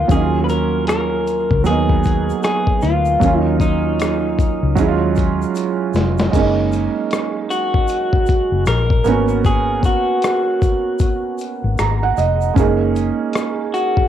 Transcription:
Already playing: F3 A#3 B3 D#4 F4
0.08 D#2 F#3 A#3 G#4, kick, closed hi-hat, shaker
0.12 C#4 D#4
0.21 F4
0.44 B4
0.49 A#4, closed hi-hat, shaker
0.87 A#4, cross-stick, closed hi-hat, shaker
1.27 closed hi-hat, shaker
1.51 C#2, kick
1.64 D#2 F#3 A#3 G#4, closed hi-hat, shaker
1.68 B3 D#4
1.89 kick
2.04 kick, closed hi-hat, shaker
2.30 shaker
2.43 G#4, cross-stick, closed hi-hat, shaker
2.67 kick
2.82 D2 F4, closed hi-hat, shaker
3.05 shaker
3.20 D#2 F#3 A#3, kick, closed hi-hat, shaker
3.24 C#4 F4
3.41 D#4
3.60 D#4, kick, closed hi-hat, shaker
4.00 cross-stick, closed hi-hat, shaker
4.39 kick, closed hi-hat, shaker
4.63 C#2
4.75 D#2 F#3 G#3, kick, closed hi-hat, shaker
4.79 C#4 E4
4.88 F4
5.15 kick, closed hi-hat, shaker
5.42 shaker
5.55 closed hi-hat, shaker
5.93 F1, snare, closed hi-hat, shaker
6.18 snare, shaker
6.31 F#1 G#3 A#3, kick, closed hi-hat, crash, shaker
6.36 C#4 D#4
6.72 closed hi-hat, shaker
7.11 cross-stick, closed hi-hat, shaker
7.51 F#4, closed hi-hat, shaker
7.74 kick
7.88 closed hi-hat, shaker
8.13 kick
8.26 kick, closed hi-hat, shaker
8.52 F#1
8.66 A#1 A#4, cross-stick, closed hi-hat, shaker
8.90 kick
9.04 G#1 A#3 B3 C#4, closed hi-hat, shaker
9.10 F#4
9.28 shaker
9.45 G#4, kick, closed hi-hat, shaker
9.83 F#4, kick, closed hi-hat, shaker
10.22 cross-stick, closed hi-hat, shaker
10.62 kick, closed hi-hat, shaker
10.99 kick, closed hi-hat, shaker
11.38 closed hi-hat, shaker
11.64 G#1
11.78 G#1 A#5, cross-stick, closed hi-hat, shaker
12.03 F#5
12.17 F1 D#5, closed hi-hat, shaker
12.41 shaker
12.54 F#1 G#3 C#4, kick, closed hi-hat, shaker
12.58 A#3 D#4 G#4
12.96 closed hi-hat, shaker
13.33 cross-stick, closed hi-hat, shaker
13.74 F#4, closed hi-hat, shaker
13.97 kick

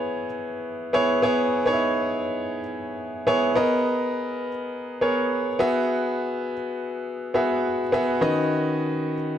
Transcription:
Already playing: B3 E4 G#4 C#5
0.93 B3 E4 G#4 C#5
1.22 B3 E4 G#4 C#5
1.66 B3 D#4 G#4 C#5
1.73 E4
3.27 B3 E4 G#4 C#5
3.55 B3 G#4 A#4 D#5
5.01 B3 G#4 A#4 C#5
5.59 B3 F#4 G#4 E5
7.34 B3 F#4 G#4 E5
7.92 B3 F#4 G#4 E5
8.21 D#3 C#4 F#4 B4 D#5

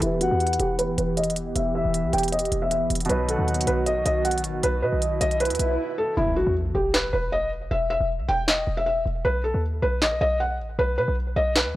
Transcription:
Already playing: E3
0.00 E1 E3 B3 E4 G4, closed hi-hat
0.06 B4
0.21 F#1 F#4 F#5, closed hi-hat
0.31 E2
0.40 closed hi-hat
0.47 closed hi-hat
0.53 closed hi-hat
0.59 E1 G4, closed hi-hat
0.79 B4, closed hi-hat
0.98 E1 B4, closed hi-hat
1.17 D#5, closed hi-hat
1.24 closed hi-hat
1.30 closed hi-hat
1.36 closed hi-hat
1.56 E1 E5, closed hi-hat
1.75 E5
1.85 E1
1.94 closed hi-hat
2.04 B1
2.13 E1 G5, closed hi-hat
2.18 closed hi-hat
2.23 closed hi-hat
2.28 closed hi-hat
2.32 D#5, closed hi-hat
2.39 closed hi-hat
2.45 closed hi-hat
2.52 E1, closed hi-hat
2.62 E5
2.71 E5, closed hi-hat
2.90 E1, closed hi-hat
2.95 closed hi-hat
3.00 closed hi-hat
3.05 B2 F#3, closed hi-hat
3.09 B1 D#3 D#4 F#4 B4, closed hi-hat
3.14 B4
3.28 A4 F#5, closed hi-hat
3.39 D#2
3.48 closed hi-hat
3.54 closed hi-hat
3.61 closed hi-hat
3.67 B1 B4, closed hi-hat
3.86 A1 D#5, closed hi-hat
3.97 B1
4.06 B1 D#5, closed hi-hat
4.25 F#5, closed hi-hat
4.31 closed hi-hat
4.38 closed hi-hat
4.44 A1, closed hi-hat
4.63 B1 B4, closed hi-hat, swell
4.82 B2 B4 D#5
4.93 B1
5.02 closed hi-hat
5.21 B1 D#5, closed hi-hat
5.31 closed hi-hat
5.40 B4, closed hi-hat
5.45 closed hi-hat
5.50 D#2, closed hi-hat
5.55 closed hi-hat
5.59 B1, closed hi-hat
5.98 A4
6.17 E1 E4, impact
6.36 F#1 F#4
6.47 E2
6.75 E1 G4
6.94 B4, snare, clap
7.13 E1 B4
7.32 D#5
7.71 E1 E5
7.90 E5
8.00 E1
8.20 B1
8.29 E1 G5
8.48 D#5, snare, clap
8.67 E1
8.77 E5
8.86 E5
9.06 E1
9.25 B1 B4
9.44 A4
9.54 D#2
9.82 B1 B4
10.02 A1 D#5, snare, clap
10.12 B1
10.21 B1 D#5
10.40 F#5
10.59 A1
10.79 B1 B4
10.98 B2 B4
11.08 B1
11.36 B1 D#5
11.56 B4, snare, clap
11.66 D#2

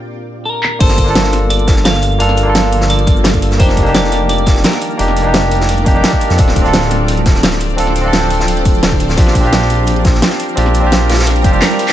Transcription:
Already playing: D4 F4 G4
0.45 A#4
0.63 clap
0.79 G1 F3 A#3 D4 F4 A4 C5, kick, closed hi-hat, crash
0.89 snare
0.98 kick, closed hi-hat, shaker
1.04 A#3 D4, closed hi-hat
1.08 F4 A4
1.15 snare, closed hi-hat
1.24 snare
1.33 snare, closed hi-hat, shaker
1.50 D5, closed hi-hat
1.59 closed hi-hat
1.67 kick, snare, closed hi-hat, shaker
1.76 snare, shaker
1.85 G1 F5, snare, closed hi-hat
1.94 snare, closed hi-hat
2.02 closed hi-hat, shaker
2.12 shaker
2.19 G1 A#3 D4 F4 A4 F5, closed hi-hat
2.29 snare
2.37 closed hi-hat, shaker
2.43 G1 A#3 D4
2.47 F4 A4
2.55 snare, closed hi-hat
2.73 closed hi-hat, shaker
2.81 snare
2.90 D5, closed hi-hat
2.99 closed hi-hat
3.07 kick, closed hi-hat, shaker
3.16 shaker
3.24 G1, snare, closed hi-hat
3.34 kick, closed hi-hat
3.42 closed hi-hat, shaker
3.51 snare, shaker
3.58 F1 D#3 G3 A#3 D4 D#4 G4 A#4 C5 D5, kick, closed hi-hat
3.69 snare
3.76 kick, closed hi-hat, shaker
3.83 F1 A#3 D4, closed hi-hat
3.87 D#4 G4
3.95 D5, snare, closed hi-hat
4.04 snare
4.12 snare, closed hi-hat, shaker
4.29 D5, closed hi-hat
4.38 closed hi-hat
4.46 kick, snare, closed hi-hat, shaker
4.56 snare, shaker
4.64 A#4, snare, closed hi-hat
4.73 snare, closed hi-hat
4.81 closed hi-hat, shaker
4.91 shaker
4.97 F1 A#3 D4 D#4 G4, closed hi-hat
5.08 snare
5.16 closed hi-hat, shaker
5.22 F1 A#3 D4
5.26 D#4 G4
5.33 snare, closed hi-hat
5.51 closed hi-hat, shaker
5.61 snare
5.69 closed hi-hat
5.78 closed hi-hat
5.85 A#3 D4 D#4 G4, kick, closed hi-hat, shaker
5.94 A#3 D4 D#4 G4, shaker
6.04 snare, closed hi-hat
6.13 kick, closed hi-hat
6.21 closed hi-hat, shaker
6.30 F2, snare, closed hi-hat, shaker
6.37 D1 F3 C4 D4 F4 A4 C5, kick, closed hi-hat
6.48 snare
6.56 kick, closed hi-hat, shaker
6.62 C4 D4, closed hi-hat
6.66 F4 A4
6.73 snare, closed hi-hat
6.82 snare
6.90 snare, closed hi-hat, shaker
7.08 closed hi-hat
7.17 closed hi-hat
7.25 kick, snare, closed hi-hat, shaker
7.35 snare, shaker
7.43 D1, snare, closed hi-hat
7.51 snare, closed hi-hat
7.60 closed hi-hat, shaker
7.70 shaker
7.77 D1 C4 D4 F4 A4, closed hi-hat
7.87 snare
7.96 closed hi-hat, shaker
8.01 D1 C4 D4
8.06 F4 A4
8.13 snare, closed hi-hat
8.30 closed hi-hat, shaker
8.40 snare
8.48 closed hi-hat
8.57 closed hi-hat
8.65 kick, closed hi-hat, shaker
8.74 shaker
8.83 D1, snare, closed hi-hat
8.92 kick, closed hi-hat
9.00 closed hi-hat, shaker
9.09 snare, shaker
9.16 A#1 G3 C4 D4 F4 G4 A#4, kick, closed hi-hat
9.27 snare
9.35 kick, closed hi-hat, shaker
9.41 A#1 C4 D4, closed hi-hat
9.45 F4 G4
9.53 snare, closed hi-hat
9.61 snare
9.70 closed hi-hat, shaker
9.87 closed hi-hat
9.96 closed hi-hat
10.05 kick, snare, closed hi-hat, shaker
10.14 snare, shaker
10.22 snare, closed hi-hat
10.30 snare, closed hi-hat
10.40 closed hi-hat, shaker
10.49 shaker
10.56 A#1 C4 D4 F4 G4, closed hi-hat
10.66 snare
10.74 closed hi-hat, shaker
10.80 A#1 C4 D4
10.85 F4 G4
10.92 snare, closed hi-hat
11.10 snare, closed hi-hat, shaker
11.13 snare, closed hi-hat
11.19 snare, closed hi-hat
11.22 snare, closed hi-hat
11.26 snare, closed hi-hat, swell
11.36 closed hi-hat
11.43 F1 C4 D4 F4 G4, kick, closed hi-hat, shaker
11.52 C4 D4 F4 G4, shaker
11.62 A#4, snare, clap, closed hi-hat
11.71 closed hi-hat
11.79 closed hi-hat, shaker
11.88 snare, clap, closed hi-hat, shaker

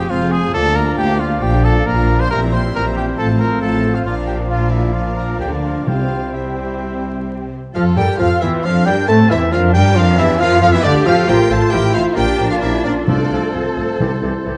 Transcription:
Already playing: F3 C4
0.00 C4 G4 G#4 F5
0.10 F1 F2 F3 G#3 C4 F4 C5 F5 G#5
0.21 C4 G#4 F5
0.31 G#3 F4 G#4 G#5
0.43 C4 G#4 F5
0.53 D2 F3 A#3 D4 F4 A4 D5 F5 A5
0.64 D4 A#4 F5
0.74 A#3 F4 A#4 D5 A#5
0.86 D4 A#4 F5
0.97 D2 A#3 F4 G4 D5 G5
1.06 D4 A#4 F5
1.17 A#3 F4 D5 F5
1.28 D4 A#4 F5
1.39 A#1 A#2 A#3 F4 G4 D5 G5
1.44 F3 D4
1.50 D4 A#4 F5
1.62 A#3 F4 A4 D5 A5
1.73 D4 A#4 F5
1.85 A#1 A#2 F3 A#3 D4 F4 A#4 D5 A#5
1.96 D4 A#4 F5
2.06 A#3 F4 D5
2.17 D4 A#4 C5 F5 C6
2.28 A#1 A#2 E3 G3 A#3 C4 G4 A#4 C5 E5 G5
2.32 A#5
2.40 C4 E4 E5
2.50 A#3 G4 C5 G5 C6
2.61 C4 E4 E5
2.73 A#1 A#2 E3 A#3 C4 G4 A#4 G5 A#5
2.84 C4 E4 E5
2.96 A#3 G4 G5
3.07 C4 E4 E5
3.17 A1 A2 F3 A3 C4 F4 A4 F5 A5
3.29 C4 A4 F5
3.40 A3 F4 A#4 A5 A#5
3.51 C4 A4 F5
3.61 A1 A2 F3 A3 C4 F4 A4 A5
3.73 C4 A4 F5
3.83 A3 F4 A5
3.94 C4 F4 A4 F5
4.05 A#1 A#2 F3 A#3 D4 F4 A#4 D5 F5
4.27 G4 G5
4.49 F3 D4 F4 A#4 F5
4.71 E4 E5
4.93 F3 D4 F4 A#4 F5
5.16 A#4 A#5
5.39 D2 D3 G4 G5
5.63 F4 F5
5.86 C2 C3 G3 C4 F4 G4 C5 F5 G5
6.33 G3 C4 E4 G4 C5 E5
7.74 F2 F3 F4 A4 F5
7.96 G2 G3 G4 A#4 G5
8.18 F2 F3 F4 A4 F5
8.41 E2 E3 E4 G4 E5
8.64 F2 F3 D4 F4 A4 F5
8.86 G2 G3 G4 A#4 G5
9.07 A2 A3 C4 A4 C5 A5
9.30 E2 E3 E4 G4 E5
9.51 F2 F3 D4 F4 A#4 F5
9.73 G2 G3 G4 A#4 G5
9.95 F2 F3 F4 A#4 F5
10.17 E2 E3 E4 G4 E5
10.39 F2 F3 F4 A#4 F5
10.61 F2 F3 F4 A4 F5
10.72 E2 E3 E4 G4 E5
10.83 D2 D3 D4 F4 G4 D5
11.05 F2 F3 F4 A4 F5
11.27 A1 F3 A3 C4 F4 G4 A#4 C5 G5
11.50 A1 F3 C4 A4 C5 A5
11.71 A1 F3 C4 E4 G4 A#4 C5 G5
11.93 A1 F3 C4 F4 A4 C5 F5
12.14 A#1 F3 A#3 D4 G4 A#4 D5 G5
12.38 A#1 F3 A#3 A#4
12.50 F4 A4 F5
12.61 A#1 F3 A#3 E4 G4 A#4 E5
12.84 A#1 F3 A#3 D4 F4 A#4 D5
13.07 C2 C3 F3 A3 D4 F4 A4 C5 D5
13.31 C2 F3 A3 A4
13.53 C2 F3 A3 C4 F4 A4 C5
13.77 C2 F3 A3 A4
13.99 C2 C3 E3 G3 E4 G4
14.22 C2 E3 G3 G4
14.45 C2 E3 G3 G4

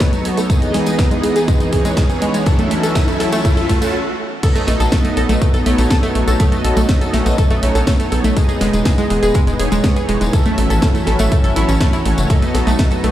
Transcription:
Already playing: F#3 B3 D#4 A4 B4 C#5, riser
0.00 A3, kick, snare, closed hi-hat, tambourine
0.13 A3, closed hi-hat, tambourine
0.25 A4, open hi-hat
0.37 A3, closed hi-hat, tambourine
0.50 E3 G#3 B3 D#4 G#4 D#5, kick, closed hi-hat, tambourine
0.62 G#4, closed hi-hat, tambourine
0.74 G#3, snare, open hi-hat
0.86 G#3, closed hi-hat, tambourine
0.99 G#4, kick, snare, closed hi-hat, tambourine
1.11 G#3, closed hi-hat, tambourine
1.24 G#3, open hi-hat
1.36 G#4, closed hi-hat, tambourine
1.48 G#3, kick, closed hi-hat, tambourine
1.60 G#3, closed hi-hat, tambourine
1.73 E3 B3 D#4 G#4 C#5, kick, open hi-hat
1.85 G#3, closed hi-hat, tambourine
1.97 G#3, kick, snare, closed hi-hat, tambourine
2.10 G#4, closed hi-hat, tambourine
2.22 G#3, open hi-hat
2.34 G#3, closed hi-hat, tambourine
2.46 E3 F#3 C#4 E4 F#4 A4 E5, kick, closed hi-hat, tambourine
2.59 A3, closed hi-hat, tambourine
2.71 A3, open hi-hat
2.83 A4, closed hi-hat, tambourine
2.95 A3, kick, snare, closed hi-hat, tambourine
3.08 A3, closed hi-hat, tambourine
3.20 A4, snare, open hi-hat
3.32 A3, closed hi-hat, tambourine
3.45 A3, kick, closed hi-hat, tambourine
3.57 A4, closed hi-hat, tambourine
3.69 A3, kick, open hi-hat
3.82 F#3 A3 C#4 E4 A4 A5, closed hi-hat, tambourine
4.43 F#3 A3 B3 D#4 F#4 A4 D#5, kick, closed hi-hat, tambourine, crash
4.55 A3, closed hi-hat, tambourine
4.67 B1 A3, snare, open hi-hat
4.80 B1 A4, closed hi-hat, tambourine
4.92 A3, kick, snare, closed hi-hat, tambourine
5.05 A3, closed hi-hat, tambourine
5.17 B1 A4, open hi-hat
5.29 B1 A3, closed hi-hat, tambourine
5.41 A3, kick, closed hi-hat, tambourine
5.54 B1 A4, closed hi-hat, tambourine
5.66 B1 F#3 A3 B3 D#4 A4 C#5, open hi-hat
5.78 B1 A3, closed hi-hat, tambourine
5.90 A4, kick, snare, closed hi-hat, tambourine
6.03 A3, closed hi-hat, tambourine
6.15 B1 A3, open hi-hat
6.28 B1 A4, closed hi-hat, tambourine
6.40 F#3 A3 B3 C#4 D#4 A4 D#5, kick, closed hi-hat, tambourine
6.52 A3, closed hi-hat, tambourine
6.64 B1 A4, open hi-hat
6.77 B1 A3, closed hi-hat, tambourine
6.89 A3, kick, snare, closed hi-hat, tambourine
7.01 A4, closed hi-hat, tambourine
7.13 B1 A3, snare, open hi-hat
7.26 B1 A3, closed hi-hat, tambourine
7.38 A4, kick, closed hi-hat, tambourine
7.50 B1 A3, closed hi-hat, tambourine
7.63 B1 F#3 A3 B3 D#4 A4 C#5, open hi-hat
7.75 B1 A4, closed hi-hat, tambourine
7.87 A3, kick, snare, closed hi-hat, tambourine
8.00 A3, closed hi-hat, tambourine
8.12 B1 A4, open hi-hat
8.24 B1 A3, closed hi-hat, tambourine
8.36 E3 G#3 B3 D#4 G#4 D#5, kick, closed hi-hat, tambourine
8.49 G#4, closed hi-hat, tambourine
8.61 E1 G#3, snare, open hi-hat
8.73 E1 G#3, closed hi-hat, tambourine
8.85 G#4, kick, snare, closed hi-hat, tambourine
8.98 G#3, closed hi-hat, tambourine
9.10 E1 G#3, open hi-hat
9.23 E1 G#4, closed hi-hat, tambourine
9.34 G#3, kick, closed hi-hat, tambourine
9.47 E1 G#3, closed hi-hat, tambourine
9.60 E1 E3 B3 D#4 G#4 C#5, open hi-hat
9.72 E1 G#3, closed hi-hat, tambourine
9.84 G#3, kick, snare, closed hi-hat, tambourine
9.96 G#4, closed hi-hat, tambourine
10.09 E1 G#3, open hi-hat
10.21 E1 G#3, closed hi-hat, tambourine
10.33 E3 F#3 A3 C#4 E4 F#4 A4 E5, kick, closed hi-hat, tambourine
10.46 A3, closed hi-hat, tambourine
10.58 A1 A3, open hi-hat
10.70 A1 A4, closed hi-hat, tambourine
10.82 A3, kick, snare, closed hi-hat, tambourine
10.95 A3, closed hi-hat, tambourine
11.07 A1 A4, snare, open hi-hat
11.19 A1 A3, closed hi-hat, tambourine
11.32 A3, kick, closed hi-hat, tambourine
11.44 A1 A4, closed hi-hat, tambourine
11.56 A1 F#3 C#4 E4 A4 C#5, open hi-hat
11.69 A1 C#4, closed hi-hat, tambourine
11.81 A3, kick, snare, closed hi-hat, tambourine
11.93 E4, closed hi-hat, tambourine
12.05 A1 A3, open hi-hat
12.18 F#1, closed hi-hat, tambourine
12.30 F#3 A3 B3 D#4 A4 D#5, kick, closed hi-hat, tambourine
12.42 A3, closed hi-hat, tambourine
12.54 B1 A4, snare, open hi-hat
12.67 B1 A3, closed hi-hat, tambourine
12.79 A3, kick, snare, closed hi-hat, tambourine
12.91 A4, closed hi-hat, tambourine
13.04 B1 A3, open hi-hat

